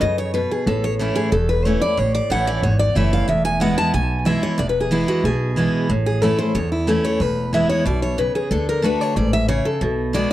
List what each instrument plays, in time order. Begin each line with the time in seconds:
0.01 upright bass F#2, steel-string acoustic guitar C#3 D#5
0.18 steel-string acoustic guitar C#5
0.34 steel-string acoustic guitar B2 B4
0.51 steel-string acoustic guitar G#4
0.66 upright bass A1, steel-string acoustic guitar A2 A4
0.84 steel-string acoustic guitar C#5
0.99 steel-string acoustic guitar E3 A3 C#4 E4
1.15 steel-string acoustic guitar G#4
1.32 upright bass E1, steel-string acoustic guitar E2 A4
1.49 steel-string acoustic guitar B4
1.65 steel-string acoustic guitar E3 A3 C#4 E4 C#5
1.81 steel-string acoustic guitar C#4 E4 D5
1.97 upright bass A1, steel-string acoustic guitar A2 C#5
2.15 steel-string acoustic guitar D5
2.30 upright bass A1, steel-string acoustic guitar E3 A3 C#4 E4 F#5
2.47 steel-string acoustic guitar D5
2.63 upright bass G#1, steel-string acoustic guitar E2 C#5
2.79 steel-string acoustic guitar D5
2.95 upright bass F#1, steel-string acoustic guitar E3 A3 C#4 E4 E5
3.13 steel-string acoustic guitar F5
3.28 upright bass E1, steel-string acoustic guitar E2 E5
3.45 steel-string acoustic guitar G#5
3.60 steel-string acoustic guitar E3 G#3 B3 E4 F#5
3.78 steel-string acoustic guitar A5
3.94 upright bass B1, steel-string acoustic guitar B2 G#5
4.25 steel-string acoustic guitar E3 G#3 B3 E4 E5
4.43 steel-string acoustic guitar C#5
4.58 upright bass E1, steel-string acoustic guitar E2 D5
4.69 steel-string acoustic guitar B4
4.80 steel-string acoustic guitar G#4
4.91 steel-string acoustic guitar E3 G#3 B3 E4
5.08 steel-string acoustic guitar F#4
5.24 upright bass B1, steel-string acoustic guitar B2 G#4
5.56 steel-string acoustic guitar E3 G#3 B3 E4
5.89 upright bass A1, steel-string acoustic guitar A2
6.06 steel-string acoustic guitar G#4
6.22 steel-string acoustic guitar E3 A3 C#4 E4 A4
6.38 steel-string acoustic guitar C#4 E4 C5
6.55 upright bass E2, steel-string acoustic guitar E2 C#5
6.72 steel-string acoustic guitar E4
6.87 steel-string acoustic guitar E3 A3 C#4 E4 A4
7.04 steel-string acoustic guitar C#5
7.20 upright bass E1, steel-string acoustic guitar E2 B4
7.53 steel-string acoustic guitar E3 G#3 B3 E4 E5
7.69 steel-string acoustic guitar C#5
7.85 upright bass B1, steel-string acoustic guitar B2 D5
8.02 steel-string acoustic guitar C#5
8.18 steel-string acoustic guitar C#3 B4
8.35 steel-string acoustic guitar G#4
8.51 upright bass D2, steel-string acoustic guitar D3 A4
8.69 steel-string acoustic guitar A#4
8.82 steel-string acoustic guitar D3 A3 D4 F#4 B4
9.01 steel-string acoustic guitar C#5
9.16 upright bass A1, steel-string acoustic guitar G#2 D5
9.33 steel-string acoustic guitar E5
9.48 steel-string acoustic guitar C#3 C#5
9.65 steel-string acoustic guitar A4
9.81 upright bass B1, steel-string acoustic guitar B2
10.13 steel-string acoustic guitar D#3 G#3 B3 F#4 D5